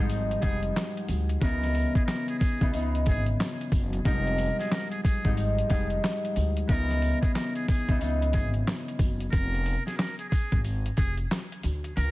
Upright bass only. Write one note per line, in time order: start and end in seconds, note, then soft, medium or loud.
0.00 0.33 G#1 medium
0.43 0.68 F1 medium
1.09 1.34 D2 medium
1.42 1.83 C#2 loud
2.61 3.08 C#2 medium
3.07 3.32 G#1 medium
3.72 3.98 F#1 medium
4.06 4.47 F1 loud
5.25 5.60 G#1 medium
5.70 5.96 F1 medium
6.37 6.62 D2 medium
6.69 7.11 C#2 loud
7.89 8.36 C#2 medium
8.34 8.60 G#1 medium
8.99 9.25 F#1 medium
9.33 9.74 F1 loud
10.52 10.88 G#1 medium
10.98 11.23 F1 medium
11.64 11.89 D2 medium
11.97 12.11 C#2 loud